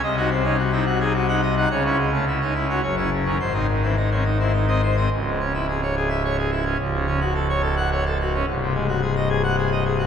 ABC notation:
X:1
M:3/4
L:1/16
Q:1/4=107
K:C#m
V:1 name="Pipe organ"
[^B,,d] [DF] ^B, [CD] F [DE] F [DG] F [Df] d [Df] | [C,c] [CE] G, [A,C] E [CD] E [CF] [F,,c] [CE] C, [D,C] | [G,,^B] [^B,D] D, [E,B,] D [B,C] D [B,E] D [B,d] B [B,d] | C,, G,, C E G c G e c G E C |
C,, C, C F A c A f c A F C | ^B,,, ^B,, G, F G d G f G d G F |]
V:2 name="Pipe organ" clef=bass
^B,,,12 | C,,8 F,,,4 | G,,,12 | C,,,12 |
C,,,12 | ^B,,,,12 |]